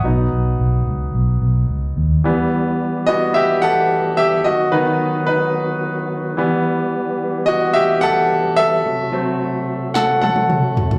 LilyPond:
<<
  \new Staff \with { instrumentName = "Grand piano" } { \time 4/4 \key b \minor \tempo 4 = 109 <fis'' dis'''>2~ <fis'' dis'''>8 r4. | \key e \minor r4. <fis' dis''>8 <g' e''>8 <a' fis''>4 <g' e''>8 | <fis' dis''>8 <dis' b'>4 <dis' b'>2 r8 | r4. <fis' dis''>8 <g' e''>8 <a' fis''>4 <a' e''>8~ |
<a' e''>2 <a' fis''>8 <a' fis''>4 r8 | }
  \new Staff \with { instrumentName = "Grand piano" } { \clef bass \time 4/4 \key b \minor <fis b dis'>4. r2 r8 | \key e \minor <e g b>4. <e g b>8 r2 | r8 <dis fis b>8 r2 r8 <e g b>8 | r1 |
r8 <fis a c'>4. r2 | }
  \new Staff \with { instrumentName = "Tonewheel organ" } { \clef bass \time 4/4 \key b \minor << { r1 | \key e \minor <e g g'>1 | <dis fis fis'>2.~ <dis fis fis'>8 <e g g'>8~ | <e g g'>1 |
<c fis fis'>1 | } \\ { r1 | b1~ | b1~ | b1 |
a1 | } >> }
  \new Staff \with { instrumentName = "Fingered electric bass" } { \clef bass \time 4/4 \key b \minor b,,8 b,,8 b,,8 cis,8 b,,8 b,,8 cis,8 dis,8 | \key e \minor r1 | r1 | r1 |
r1 | }
  \new DrumStaff \with { instrumentName = "Drums" } \drummode { \time 4/4 r4 r4 r4 r4 | r4 r4 r4 r4 | r4 r4 r4 r4 | r4 r4 r4 r4 |
r4 r4 sn8 tommh16 tommh16 toml8 tomfh16 tomfh16 | }
>>